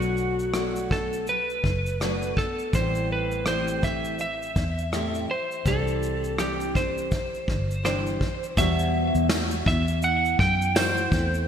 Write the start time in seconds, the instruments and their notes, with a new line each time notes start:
Already playing: fingered electric bass B1, nylon-string guitar B2 F#3 A3 D4 F#4, electric slide guitar F#4
0.02 shaker
0.17 shaker
0.39 shaker
0.54 nylon-string guitar B2 F#3 A3 D4 F#4, cross-stick, shaker
0.76 shaker
0.91 electric slide guitar A4, kick
1.13 shaker
1.27 nylon-string guitar B2 F#3, electric slide guitar B4, shaker
1.50 shaker
1.63 fingered electric bass F#1, nylon-string guitar B2 F#3, kick
1.86 shaker
2.00 nylon-string guitar B2 F#3 A3 D4 F#4, cross-stick, shaker
2.22 shaker
2.36 nylon-string guitar B2 F#3, electric slide guitar A4, kick
2.59 shaker
2.73 fingered electric bass A1, nylon-string guitar A2 E3 G3 C4 G4, electric slide guitar C5, kick, shaker
2.95 shaker
3.12 electric slide guitar B4
3.31 shaker
3.45 nylon-string guitar A2 E3 G3 C4 G4, electric slide guitar C5, cross-stick, shaker
3.68 shaker
3.83 electric slide guitar E5, kick, shaker
4.05 shaker
4.18 nylon-string guitar A2 E3, electric slide guitar E5, shaker
4.42 shaker
4.55 fingered electric bass E2, nylon-string guitar A2 E3, kick, shaker
4.78 shaker
4.92 nylon-string guitar A2 E3 G3 C4 G4, cross-stick, shaker
5.14 shaker
5.28 nylon-string guitar A2, electric slide guitar C5
5.51 shaker
5.65 fingered electric bass C2, nylon-string guitar C3 E3 G3 D4 E4, electric slide guitar A4, kick, shaker
5.88 shaker
6.03 shaker
6.24 shaker
6.38 nylon-string guitar C3 E3 G3 D4 E4, electric slide guitar G4, cross-stick, shaker
6.60 shaker
6.75 electric slide guitar C5, kick, shaker
6.98 shaker
7.11 nylon-string guitar C3 E3, kick, shaker
7.34 shaker
7.47 fingered electric bass G1, nylon-string guitar C3 E3, kick
7.71 shaker
7.83 nylon-string guitar C3 E3 G3 D4 E4, electric slide guitar C5, cross-stick, shaker
8.06 shaker
8.20 nylon-string guitar C3 E3, kick
8.43 shaker
8.57 fingered electric bass E2, nylon-string guitar E2 B2 E3 G3 B3 F#4, electric slide guitar E5, kick, shaker
8.79 shaker
9.15 fingered electric bass E2, shaker
9.29 nylon-string guitar E3 G3 B3 F#4, snare, tambourine, shaker
9.51 shaker
9.66 fingered electric bass E2, nylon-string guitar E3 B3, electric slide guitar E5, kick
9.88 shaker
10.02 electric slide guitar F#5, shaker
10.25 shaker
10.39 fingered electric bass F#2, electric slide guitar G5, kick
10.62 shaker
10.75 nylon-string guitar E3 F#4, electric slide guitar C5, snare, tambourine, shaker
10.97 shaker
11.12 fingered electric bass E2, nylon-string guitar A3 C4 E4, kick, shaker
11.34 shaker